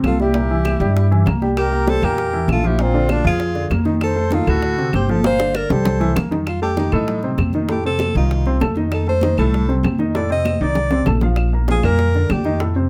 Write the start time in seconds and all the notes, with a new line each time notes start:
Already playing: C3 C4
0.04 C2 F4 A4, high bongo, low bongo, high conga, claves
0.19 G3 E4 G4, high bongo, high conga
0.34 A#2 A#3, high bongo, high conga
0.50 E3 E4, high conga
0.65 high bongo, high conga, claves
0.80 G2 G3 G4, high bongo
0.96 high bongo, high conga
1.11 E3 E4, high bongo, high conga
1.26 C2 A#3 A#4, high bongo, low bongo, high conga, claves
1.42 G3 G4, high bongo, high conga
1.57 G4 A#4, high bongo, claves
1.72 A#3 A#4
1.87 G3 G4 A4 C5, high bongo, high conga
2.02 E2 A#2 A#3 G4 A#4, high bongo, high conga, claves
2.18 high bongo, high conga
2.33 E3 E4, high bongo, high conga
2.48 A#1 A4, high bongo, low bongo, high conga, claves
2.52 F4
2.63 F3 F4 G4, high bongo, high conga
2.67 E4
2.79 A#2 A#3 C4 F4, high bongo, high conga
2.94 D3 D4, high conga
3.09 D4 F4, high bongo, high conga, claves
3.24 F2 F3 F4 G#4, high bongo, high conga
3.40 high bongo, high conga
3.55 D3 D4, high bongo, high conga
3.70 F2 A#3 A#4, high bongo, low bongo, high conga, claves
3.85 D#3 D#4, high bongo, high conga
4.00 A4 C5, high bongo, high conga, claves
4.16 A3 A4
4.30 D#3 D#4 F4 A4, high bongo, high conga
4.47 D2 A2 A3 F#4 A4, high bongo, high conga, claves
4.62 high bongo
4.78 C3 C4, high bongo, high conga
4.93 G1 G4 C5, high bongo, low bongo, high conga, claves
5.09 F3 F4 A4 C5, high bongo, high conga
5.24 A#2 A#3 C5 F5, high bongo, high conga
5.39 D3 D4, high bongo
5.55 A#4 D5, high bongo, claves
5.70 C2 G3 G4 A4 C5, low bongo, low conga
5.85 low bongo, low conga
6.00 E3 E4, low conga
6.15 F2 A#3 A#4, low bongo, low conga, claves
6.31 D#3 D#4, low bongo, low conga
6.47 F4, high bongo, high conga, claves
6.62 A3 G4 A4 A5, high conga
6.77 D#3 D#4 D#5, high bongo, high conga
6.92 A2 A3 D#4 A4, high bongo, high conga, low conga, claves
7.08 high bongo, high conga, low conga
7.23 C3 C4 C5, high bongo, high conga
7.38 F2, high bongo, low bongo, high conga, claves
7.53 D#3 D#4 D#5, high bongo, high conga
7.69 A2 A3 G4 A4, high bongo, high conga
7.84 C3 C4 A4 C5, high conga
7.99 high bongo, high conga, claves
8.14 C2 D#3 D#4 F4 D#5, high bongo, high conga
8.30 high bongo, high conga
8.45 C3 C4 C5, high bongo, high conga
8.60 F2 A3 A4 A5, high bongo, low bongo, high conga, claves
8.76 D#3 D#4 D#5, high bongo, high conga
8.92 A4, high bongo, claves
9.06 A3 A4 C5 A5, high conga
9.21 D#3 D#4 D#5, high bongo, high conga
9.37 C2 A2 A3 A4, high bongo, high conga, low conga, claves
9.52 high bongo, high conga
9.68 C3 C4 C5, high bongo, high conga
9.83 F2, high bongo, low bongo, high conga, claves
9.99 D#3 D#4 D#5, high bongo, high conga
10.15 A2 A3 A4 D5, high bongo
10.29 C3 C4 C5 D#5, high conga
10.45 high bongo, high conga, claves
10.61 C2 D#3 D#4 D5, high conga
10.75 low bongo, high conga
10.91 C3 C4 C5, low bongo, high conga
11.06 A#1 A3 A4 A5, low bongo, high conga, claves
11.21 F3 F4 F5, low bongo, high conga
11.36 high bongo, high conga, claves
11.53 A#3 A#4 A#5, high conga
11.68 F3 F4 G#4 F5, high bongo, high conga
11.83 F2 A#2 A#3 A#4, high bongo, high conga, low conga, claves
11.99 high bongo, high conga
12.14 D3 D4 D5, high bongo, high conga
12.29 F2 G4, high bongo, low bongo, high conga, claves
12.44 D#3 D#4 D#5, high bongo, high conga
12.60 A2 A3 A4, high bongo
12.75 C3 C4 C5, high conga